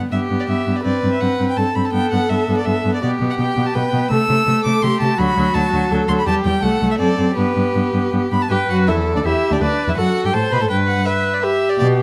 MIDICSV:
0, 0, Header, 1, 5, 480
1, 0, Start_track
1, 0, Key_signature, 1, "major"
1, 0, Tempo, 361446
1, 1138, Time_signature, 3, 2, 24, 8
1, 8326, Tempo, 372671
1, 11686, Tempo, 364520
1, 15831, End_track
2, 0, Start_track
2, 0, Title_t, "Violin"
2, 0, Program_c, 0, 40
2, 156, Note_on_c, 0, 76, 51
2, 263, Note_off_c, 0, 76, 0
2, 530, Note_on_c, 0, 74, 54
2, 579, Note_off_c, 0, 74, 0
2, 639, Note_on_c, 0, 76, 54
2, 1013, Note_on_c, 0, 74, 47
2, 1033, Note_off_c, 0, 76, 0
2, 1116, Note_off_c, 0, 74, 0
2, 1124, Note_on_c, 0, 74, 53
2, 1485, Note_off_c, 0, 74, 0
2, 1493, Note_on_c, 0, 76, 52
2, 1603, Note_on_c, 0, 78, 53
2, 1623, Note_off_c, 0, 76, 0
2, 1971, Note_off_c, 0, 78, 0
2, 1978, Note_on_c, 0, 79, 54
2, 2086, Note_on_c, 0, 81, 58
2, 2106, Note_off_c, 0, 79, 0
2, 2329, Note_on_c, 0, 83, 57
2, 2349, Note_off_c, 0, 81, 0
2, 2459, Note_on_c, 0, 81, 48
2, 2479, Note_off_c, 0, 83, 0
2, 2552, Note_off_c, 0, 81, 0
2, 2560, Note_on_c, 0, 79, 63
2, 2798, Note_off_c, 0, 79, 0
2, 2806, Note_on_c, 0, 78, 56
2, 3047, Note_on_c, 0, 76, 56
2, 3067, Note_off_c, 0, 78, 0
2, 3407, Note_off_c, 0, 76, 0
2, 3415, Note_on_c, 0, 74, 53
2, 3526, Note_on_c, 0, 76, 58
2, 3546, Note_off_c, 0, 74, 0
2, 3898, Note_off_c, 0, 76, 0
2, 3906, Note_on_c, 0, 74, 53
2, 4008, Note_off_c, 0, 74, 0
2, 4016, Note_on_c, 0, 74, 58
2, 4123, Note_off_c, 0, 74, 0
2, 4389, Note_on_c, 0, 78, 58
2, 4436, Note_off_c, 0, 78, 0
2, 4500, Note_on_c, 0, 79, 54
2, 4864, Note_on_c, 0, 81, 61
2, 4884, Note_off_c, 0, 79, 0
2, 4968, Note_on_c, 0, 79, 64
2, 4988, Note_off_c, 0, 81, 0
2, 5444, Note_off_c, 0, 79, 0
2, 5452, Note_on_c, 0, 88, 80
2, 6156, Note_off_c, 0, 88, 0
2, 6163, Note_on_c, 0, 86, 68
2, 6401, Note_on_c, 0, 84, 77
2, 6421, Note_off_c, 0, 86, 0
2, 6634, Note_off_c, 0, 84, 0
2, 6642, Note_on_c, 0, 81, 69
2, 6887, Note_on_c, 0, 83, 77
2, 6907, Note_off_c, 0, 81, 0
2, 7363, Note_on_c, 0, 81, 71
2, 7383, Note_off_c, 0, 83, 0
2, 7845, Note_off_c, 0, 81, 0
2, 8077, Note_on_c, 0, 84, 69
2, 8127, Note_off_c, 0, 84, 0
2, 8216, Note_on_c, 0, 83, 61
2, 8322, Note_off_c, 0, 83, 0
2, 8330, Note_on_c, 0, 81, 84
2, 8423, Note_off_c, 0, 81, 0
2, 8562, Note_on_c, 0, 79, 70
2, 8785, Note_on_c, 0, 78, 67
2, 8805, Note_off_c, 0, 79, 0
2, 9145, Note_off_c, 0, 78, 0
2, 9150, Note_on_c, 0, 76, 63
2, 9197, Note_off_c, 0, 76, 0
2, 9248, Note_on_c, 0, 74, 64
2, 9730, Note_off_c, 0, 74, 0
2, 9743, Note_on_c, 0, 71, 62
2, 10700, Note_off_c, 0, 71, 0
2, 10967, Note_on_c, 0, 83, 61
2, 11095, Note_on_c, 0, 81, 46
2, 11115, Note_off_c, 0, 83, 0
2, 11207, Note_on_c, 0, 79, 64
2, 11226, Note_off_c, 0, 81, 0
2, 11448, Note_off_c, 0, 79, 0
2, 11453, Note_on_c, 0, 78, 59
2, 11548, Note_off_c, 0, 78, 0
2, 11675, Note_on_c, 0, 76, 56
2, 11780, Note_off_c, 0, 76, 0
2, 12067, Note_on_c, 0, 74, 55
2, 12112, Note_off_c, 0, 74, 0
2, 12182, Note_on_c, 0, 76, 57
2, 12547, Note_on_c, 0, 74, 53
2, 12567, Note_off_c, 0, 76, 0
2, 12650, Note_off_c, 0, 74, 0
2, 12658, Note_on_c, 0, 74, 62
2, 13034, Note_on_c, 0, 76, 56
2, 13053, Note_off_c, 0, 74, 0
2, 13118, Note_off_c, 0, 76, 0
2, 13126, Note_on_c, 0, 78, 65
2, 13481, Note_off_c, 0, 78, 0
2, 13499, Note_on_c, 0, 79, 61
2, 13609, Note_on_c, 0, 81, 66
2, 13629, Note_off_c, 0, 79, 0
2, 13847, Note_on_c, 0, 83, 61
2, 13867, Note_off_c, 0, 81, 0
2, 13966, Note_on_c, 0, 81, 49
2, 13986, Note_off_c, 0, 83, 0
2, 14070, Note_off_c, 0, 81, 0
2, 14078, Note_on_c, 0, 79, 67
2, 14176, Note_off_c, 0, 79, 0
2, 14315, Note_on_c, 0, 78, 62
2, 14552, Note_on_c, 0, 76, 64
2, 14572, Note_off_c, 0, 78, 0
2, 14927, Note_on_c, 0, 74, 59
2, 14947, Note_off_c, 0, 76, 0
2, 15032, Note_off_c, 0, 74, 0
2, 15040, Note_on_c, 0, 76, 67
2, 15397, Note_on_c, 0, 74, 62
2, 15417, Note_off_c, 0, 76, 0
2, 15509, Note_off_c, 0, 74, 0
2, 15517, Note_on_c, 0, 74, 73
2, 15622, Note_off_c, 0, 74, 0
2, 15831, End_track
3, 0, Start_track
3, 0, Title_t, "Violin"
3, 0, Program_c, 1, 40
3, 165, Note_on_c, 1, 67, 46
3, 1084, Note_off_c, 1, 67, 0
3, 1124, Note_on_c, 1, 71, 51
3, 2099, Note_on_c, 1, 69, 42
3, 2119, Note_off_c, 1, 71, 0
3, 4024, Note_off_c, 1, 69, 0
3, 4032, Note_on_c, 1, 67, 52
3, 4985, Note_on_c, 1, 71, 52
3, 5005, Note_off_c, 1, 67, 0
3, 5467, Note_on_c, 1, 69, 54
3, 5487, Note_off_c, 1, 71, 0
3, 6423, Note_on_c, 1, 67, 52
3, 6443, Note_off_c, 1, 69, 0
3, 6875, Note_off_c, 1, 67, 0
3, 6883, Note_on_c, 1, 66, 59
3, 7848, Note_on_c, 1, 69, 53
3, 7867, Note_off_c, 1, 66, 0
3, 8317, Note_off_c, 1, 69, 0
3, 8325, Note_on_c, 1, 67, 55
3, 8786, Note_off_c, 1, 67, 0
3, 8797, Note_on_c, 1, 69, 59
3, 9248, Note_off_c, 1, 69, 0
3, 9256, Note_on_c, 1, 69, 50
3, 9721, Note_off_c, 1, 69, 0
3, 9729, Note_on_c, 1, 67, 44
3, 10932, Note_off_c, 1, 67, 0
3, 11208, Note_on_c, 1, 67, 59
3, 11304, Note_off_c, 1, 67, 0
3, 11451, Note_on_c, 1, 66, 58
3, 11689, Note_on_c, 1, 64, 52
3, 11709, Note_off_c, 1, 66, 0
3, 12036, Note_off_c, 1, 64, 0
3, 12044, Note_on_c, 1, 62, 48
3, 12093, Note_off_c, 1, 62, 0
3, 12162, Note_on_c, 1, 64, 53
3, 12531, Note_on_c, 1, 62, 46
3, 12550, Note_off_c, 1, 64, 0
3, 12638, Note_off_c, 1, 62, 0
3, 12646, Note_on_c, 1, 62, 56
3, 13001, Note_off_c, 1, 62, 0
3, 13012, Note_on_c, 1, 64, 50
3, 13060, Note_off_c, 1, 64, 0
3, 13131, Note_on_c, 1, 66, 57
3, 13499, Note_on_c, 1, 67, 53
3, 13519, Note_off_c, 1, 66, 0
3, 13609, Note_on_c, 1, 69, 57
3, 13629, Note_off_c, 1, 67, 0
3, 13842, Note_off_c, 1, 69, 0
3, 13850, Note_on_c, 1, 71, 61
3, 13967, Note_off_c, 1, 71, 0
3, 13976, Note_on_c, 1, 69, 47
3, 14023, Note_off_c, 1, 69, 0
3, 14567, Note_on_c, 1, 71, 44
3, 14673, Note_off_c, 1, 71, 0
3, 15035, Note_on_c, 1, 71, 42
3, 15140, Note_off_c, 1, 71, 0
3, 15831, End_track
4, 0, Start_track
4, 0, Title_t, "Viola"
4, 0, Program_c, 2, 41
4, 0, Note_on_c, 2, 59, 40
4, 145, Note_off_c, 2, 59, 0
4, 153, Note_on_c, 2, 59, 37
4, 398, Note_off_c, 2, 59, 0
4, 404, Note_on_c, 2, 59, 37
4, 641, Note_off_c, 2, 59, 0
4, 649, Note_on_c, 2, 59, 39
4, 877, Note_off_c, 2, 59, 0
4, 885, Note_on_c, 2, 59, 37
4, 1115, Note_off_c, 2, 59, 0
4, 1123, Note_on_c, 2, 60, 40
4, 1366, Note_off_c, 2, 60, 0
4, 1372, Note_on_c, 2, 60, 39
4, 1603, Note_off_c, 2, 60, 0
4, 1611, Note_on_c, 2, 60, 38
4, 1848, Note_off_c, 2, 60, 0
4, 1855, Note_on_c, 2, 60, 35
4, 2088, Note_off_c, 2, 60, 0
4, 2096, Note_on_c, 2, 60, 38
4, 2320, Note_off_c, 2, 60, 0
4, 2328, Note_on_c, 2, 60, 39
4, 2564, Note_off_c, 2, 60, 0
4, 2572, Note_on_c, 2, 59, 43
4, 2806, Note_off_c, 2, 59, 0
4, 2814, Note_on_c, 2, 59, 42
4, 3048, Note_off_c, 2, 59, 0
4, 3056, Note_on_c, 2, 59, 39
4, 3289, Note_off_c, 2, 59, 0
4, 3297, Note_on_c, 2, 59, 41
4, 3525, Note_off_c, 2, 59, 0
4, 3533, Note_on_c, 2, 59, 39
4, 3772, Note_off_c, 2, 59, 0
4, 3780, Note_on_c, 2, 59, 43
4, 4012, Note_off_c, 2, 59, 0
4, 4020, Note_on_c, 2, 59, 49
4, 4250, Note_off_c, 2, 59, 0
4, 4258, Note_on_c, 2, 59, 42
4, 4475, Note_off_c, 2, 59, 0
4, 4483, Note_on_c, 2, 59, 41
4, 4720, Note_off_c, 2, 59, 0
4, 4728, Note_on_c, 2, 59, 40
4, 4961, Note_off_c, 2, 59, 0
4, 4969, Note_on_c, 2, 59, 42
4, 5202, Note_off_c, 2, 59, 0
4, 5210, Note_on_c, 2, 59, 44
4, 5445, Note_off_c, 2, 59, 0
4, 5453, Note_on_c, 2, 57, 46
4, 5681, Note_off_c, 2, 57, 0
4, 5689, Note_on_c, 2, 57, 45
4, 5922, Note_off_c, 2, 57, 0
4, 5930, Note_on_c, 2, 57, 45
4, 6160, Note_off_c, 2, 57, 0
4, 6168, Note_on_c, 2, 57, 46
4, 6406, Note_off_c, 2, 57, 0
4, 6413, Note_on_c, 2, 57, 44
4, 6640, Note_off_c, 2, 57, 0
4, 6648, Note_on_c, 2, 57, 46
4, 6874, Note_off_c, 2, 57, 0
4, 6882, Note_on_c, 2, 54, 54
4, 7117, Note_off_c, 2, 54, 0
4, 7125, Note_on_c, 2, 54, 50
4, 7357, Note_off_c, 2, 54, 0
4, 7365, Note_on_c, 2, 54, 49
4, 7586, Note_off_c, 2, 54, 0
4, 7594, Note_on_c, 2, 54, 45
4, 7835, Note_off_c, 2, 54, 0
4, 7841, Note_on_c, 2, 54, 50
4, 8067, Note_off_c, 2, 54, 0
4, 8075, Note_on_c, 2, 54, 46
4, 8308, Note_off_c, 2, 54, 0
4, 8316, Note_on_c, 2, 55, 52
4, 8540, Note_off_c, 2, 55, 0
4, 8548, Note_on_c, 2, 55, 46
4, 8774, Note_off_c, 2, 55, 0
4, 8782, Note_on_c, 2, 57, 45
4, 9013, Note_off_c, 2, 57, 0
4, 9020, Note_on_c, 2, 57, 46
4, 9258, Note_off_c, 2, 57, 0
4, 9269, Note_on_c, 2, 60, 47
4, 9499, Note_off_c, 2, 60, 0
4, 9506, Note_on_c, 2, 60, 41
4, 9740, Note_off_c, 2, 60, 0
4, 9748, Note_on_c, 2, 59, 51
4, 9977, Note_off_c, 2, 59, 0
4, 9984, Note_on_c, 2, 59, 40
4, 10218, Note_off_c, 2, 59, 0
4, 10226, Note_on_c, 2, 59, 41
4, 10470, Note_off_c, 2, 59, 0
4, 10475, Note_on_c, 2, 59, 40
4, 10712, Note_off_c, 2, 59, 0
4, 10720, Note_on_c, 2, 59, 41
4, 10957, Note_off_c, 2, 59, 0
4, 10964, Note_on_c, 2, 59, 42
4, 11203, Note_off_c, 2, 59, 0
4, 11210, Note_on_c, 2, 71, 51
4, 11693, Note_on_c, 2, 69, 49
4, 11713, Note_off_c, 2, 71, 0
4, 12179, Note_on_c, 2, 67, 49
4, 12198, Note_off_c, 2, 69, 0
4, 12652, Note_on_c, 2, 71, 56
4, 12671, Note_off_c, 2, 67, 0
4, 13135, Note_on_c, 2, 69, 46
4, 13155, Note_off_c, 2, 71, 0
4, 13597, Note_off_c, 2, 69, 0
4, 13605, Note_on_c, 2, 72, 55
4, 14078, Note_off_c, 2, 72, 0
4, 14090, Note_on_c, 2, 71, 55
4, 14559, Note_off_c, 2, 71, 0
4, 14566, Note_on_c, 2, 71, 61
4, 15055, Note_on_c, 2, 67, 59
4, 15074, Note_off_c, 2, 71, 0
4, 15831, Note_off_c, 2, 67, 0
4, 15831, End_track
5, 0, Start_track
5, 0, Title_t, "Cello"
5, 0, Program_c, 3, 42
5, 161, Note_on_c, 3, 43, 39
5, 260, Note_off_c, 3, 43, 0
5, 404, Note_on_c, 3, 43, 39
5, 503, Note_off_c, 3, 43, 0
5, 646, Note_on_c, 3, 43, 42
5, 745, Note_off_c, 3, 43, 0
5, 891, Note_on_c, 3, 43, 36
5, 989, Note_off_c, 3, 43, 0
5, 1131, Note_on_c, 3, 43, 47
5, 1229, Note_off_c, 3, 43, 0
5, 1370, Note_on_c, 3, 43, 40
5, 1468, Note_off_c, 3, 43, 0
5, 1616, Note_on_c, 3, 43, 38
5, 1713, Note_off_c, 3, 43, 0
5, 1856, Note_on_c, 3, 43, 41
5, 1952, Note_off_c, 3, 43, 0
5, 2089, Note_on_c, 3, 43, 43
5, 2187, Note_off_c, 3, 43, 0
5, 2332, Note_on_c, 3, 43, 40
5, 2430, Note_off_c, 3, 43, 0
5, 2572, Note_on_c, 3, 43, 45
5, 2670, Note_off_c, 3, 43, 0
5, 2816, Note_on_c, 3, 43, 44
5, 2914, Note_off_c, 3, 43, 0
5, 3054, Note_on_c, 3, 43, 42
5, 3152, Note_off_c, 3, 43, 0
5, 3296, Note_on_c, 3, 43, 44
5, 3394, Note_off_c, 3, 43, 0
5, 3538, Note_on_c, 3, 43, 45
5, 3636, Note_off_c, 3, 43, 0
5, 3782, Note_on_c, 3, 43, 42
5, 3880, Note_off_c, 3, 43, 0
5, 4022, Note_on_c, 3, 47, 48
5, 4119, Note_off_c, 3, 47, 0
5, 4257, Note_on_c, 3, 47, 46
5, 4354, Note_off_c, 3, 47, 0
5, 4494, Note_on_c, 3, 47, 44
5, 4592, Note_off_c, 3, 47, 0
5, 4738, Note_on_c, 3, 47, 48
5, 4835, Note_off_c, 3, 47, 0
5, 4982, Note_on_c, 3, 47, 47
5, 5078, Note_off_c, 3, 47, 0
5, 5223, Note_on_c, 3, 47, 47
5, 5318, Note_off_c, 3, 47, 0
5, 5457, Note_on_c, 3, 48, 52
5, 5553, Note_off_c, 3, 48, 0
5, 5700, Note_on_c, 3, 48, 47
5, 5795, Note_off_c, 3, 48, 0
5, 5935, Note_on_c, 3, 48, 45
5, 6031, Note_off_c, 3, 48, 0
5, 6181, Note_on_c, 3, 48, 47
5, 6275, Note_off_c, 3, 48, 0
5, 6412, Note_on_c, 3, 48, 52
5, 6508, Note_off_c, 3, 48, 0
5, 6656, Note_on_c, 3, 48, 53
5, 6751, Note_off_c, 3, 48, 0
5, 6897, Note_on_c, 3, 38, 59
5, 6991, Note_off_c, 3, 38, 0
5, 7131, Note_on_c, 3, 38, 53
5, 7226, Note_off_c, 3, 38, 0
5, 7367, Note_on_c, 3, 38, 52
5, 7463, Note_off_c, 3, 38, 0
5, 7608, Note_on_c, 3, 38, 50
5, 7703, Note_off_c, 3, 38, 0
5, 7855, Note_on_c, 3, 38, 53
5, 7949, Note_off_c, 3, 38, 0
5, 8089, Note_on_c, 3, 38, 47
5, 8184, Note_off_c, 3, 38, 0
5, 8323, Note_on_c, 3, 40, 54
5, 8417, Note_off_c, 3, 40, 0
5, 8559, Note_on_c, 3, 40, 51
5, 8653, Note_off_c, 3, 40, 0
5, 8793, Note_on_c, 3, 36, 51
5, 8888, Note_off_c, 3, 36, 0
5, 9026, Note_on_c, 3, 36, 47
5, 9122, Note_off_c, 3, 36, 0
5, 9261, Note_on_c, 3, 42, 51
5, 9358, Note_off_c, 3, 42, 0
5, 9501, Note_on_c, 3, 42, 48
5, 9599, Note_off_c, 3, 42, 0
5, 9749, Note_on_c, 3, 43, 50
5, 9846, Note_off_c, 3, 43, 0
5, 9996, Note_on_c, 3, 43, 47
5, 10093, Note_off_c, 3, 43, 0
5, 10234, Note_on_c, 3, 43, 48
5, 10332, Note_off_c, 3, 43, 0
5, 10470, Note_on_c, 3, 43, 45
5, 10569, Note_off_c, 3, 43, 0
5, 10715, Note_on_c, 3, 43, 44
5, 10814, Note_off_c, 3, 43, 0
5, 10966, Note_on_c, 3, 43, 44
5, 11063, Note_off_c, 3, 43, 0
5, 11202, Note_on_c, 3, 43, 56
5, 11299, Note_off_c, 3, 43, 0
5, 11443, Note_on_c, 3, 42, 54
5, 11686, Note_on_c, 3, 40, 52
5, 11706, Note_off_c, 3, 42, 0
5, 12048, Note_on_c, 3, 38, 45
5, 12068, Note_off_c, 3, 40, 0
5, 12159, Note_off_c, 3, 38, 0
5, 12167, Note_on_c, 3, 40, 52
5, 12272, Note_off_c, 3, 40, 0
5, 12522, Note_on_c, 3, 38, 51
5, 12572, Note_off_c, 3, 38, 0
5, 12647, Note_on_c, 3, 38, 54
5, 12752, Note_off_c, 3, 38, 0
5, 13008, Note_on_c, 3, 40, 51
5, 13057, Note_off_c, 3, 40, 0
5, 13130, Note_on_c, 3, 42, 52
5, 13235, Note_off_c, 3, 42, 0
5, 13493, Note_on_c, 3, 43, 47
5, 13541, Note_off_c, 3, 43, 0
5, 13614, Note_on_c, 3, 45, 56
5, 13710, Note_off_c, 3, 45, 0
5, 13854, Note_on_c, 3, 47, 55
5, 13964, Note_off_c, 3, 47, 0
5, 13972, Note_on_c, 3, 45, 50
5, 14080, Note_off_c, 3, 45, 0
5, 14088, Note_on_c, 3, 43, 56
5, 14488, Note_off_c, 3, 43, 0
5, 15517, Note_on_c, 3, 47, 65
5, 15831, Note_off_c, 3, 47, 0
5, 15831, End_track
0, 0, End_of_file